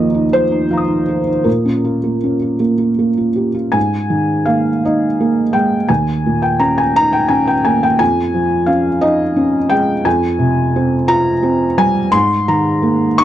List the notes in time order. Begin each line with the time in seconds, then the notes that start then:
Already playing: D#2 F3 A#3 D#4 F4 D#5
0.14 D#4
0.33 F3 C5
0.51 D#4
0.70 F3 F5 A#5
0.77 D#6
0.88 D#4
1.08 F4
1.27 D#4
1.44 A#2 A#4
1.65 C#4
1.84 F4
2.04 A#3
2.24 C#4
2.42 F4
2.60 A#3
2.78 F4
2.99 A#3
3.17 F4
3.36 G4
3.55 F4
3.72 G#2 G#5
4.10 D#3
4.46 A#3 F5
4.85 D#4 D#5
5.20 A#3
5.53 G#3 G5
5.89 D#2 G#5
6.26 A#2
6.42 G5
6.60 C#4 A#5
6.78 G#5
6.96 D#4 A#5
7.13 G5
7.28 C#4 G#5
7.47 G5
7.65 A#3 G#5
7.83 G5
7.99 F2 G#5
8.34 F3
8.66 C#4 F5
9.01 D#4 D#5
9.36 C#4
9.70 G#3 G5
10.05 F2 G#5
10.39 C3
10.76 C4
11.08 F4 A#5
11.43 C4
11.78 G3 G#5
12.12 G#2 C6
12.48 D#3 A#5
12.82 A#3
13.18 D#4 C#6